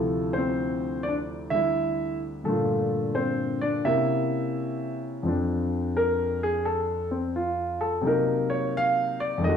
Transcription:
0.00 2.45 D2 medium
0.00 2.45 C3 medium
0.00 2.46 F3 medium
0.00 0.33 A3 medium
0.00 1.54 E4 medium
0.00 0.38 A4 medium
0.33 1.07 C5 medium
0.38 1.03 C4 medium
1.03 1.14 D5 medium
1.09 1.19 D4 medium
1.50 2.44 D3 soft
1.50 2.46 G3 soft
1.50 2.47 D4 soft
1.50 2.17 E5 medium
1.55 2.20 E4 medium
2.44 3.84 G2 soft
2.44 3.86 A#2 soft
2.44 3.85 D3 soft
2.44 3.17 A4 medium
2.48 3.12 A3 medium
2.48 3.87 F4 medium
3.15 3.59 C4 medium
3.15 3.58 C5 medium
3.61 3.84 D4 medium
3.61 3.86 D5 medium
3.85 5.24 C3 medium
3.85 5.24 A#3 medium
3.85 5.25 C#4 medium
3.85 5.25 E4 medium
3.85 4.97 E5 medium
5.23 8.02 F2 medium
5.23 8.03 F3 soft
5.23 7.10 C4 soft
5.28 8.04 D4 medium
5.97 6.40 A#4 medium
6.43 6.64 G#4 medium
6.65 7.09 A4 medium
7.11 7.33 C4 medium
7.36 7.79 F4 medium
7.81 8.03 A4 medium
8.02 9.41 C3 medium
8.02 9.42 F#3 medium
8.02 9.43 A#3 medium
8.06 9.43 D#4 medium
8.06 8.50 A#4 medium
8.50 8.72 C#5 medium
8.77 9.19 F5 loud
9.20 9.42 D5 medium
9.38 9.57 F2 medium
9.42 9.57 D#3 medium
9.42 9.57 A3 medium
9.42 9.57 D#5 medium
9.49 9.57 F#4 medium

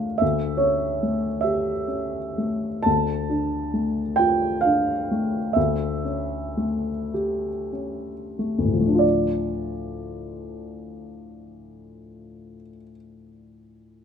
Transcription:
0.00 0.16 D2 soft
0.00 0.24 A3 soft
0.00 0.24 D4 soft
0.00 0.24 F4 soft
0.00 0.20 F5 medium
0.00 0.24 G5 medium
0.18 2.82 D2 soft
0.18 0.60 E5 medium
0.57 1.27 C#4 soft
0.57 1.42 C#5 medium
1.03 1.71 A3 soft
1.41 2.18 G4 soft
1.41 2.84 E5 medium
1.88 2.67 C#4 soft
2.38 2.86 A3 soft
2.83 5.52 D2 soft
2.83 4.16 A5 medium
3.30 4.00 D4 soft
3.74 4.46 A3 soft
4.16 4.92 F4 soft
4.16 4.63 G5 medium
4.61 5.38 D4 soft
4.61 5.54 F5 medium
5.11 5.57 A3 soft
5.53 8.57 D2 soft
5.53 9.01 E5 medium
6.05 6.91 C#4 soft
6.57 7.48 A3 soft
7.14 8.12 G4 soft
7.72 8.78 C#4 soft
8.39 8.79 A3 soft
8.58 12.54 D2 soft
8.65 12.61 A2 soft
8.73 12.69 F3 soft
8.80 12.76 A3 soft
8.87 12.83 D4 soft
8.95 12.90 F4 soft
8.99 12.94 D5 soft

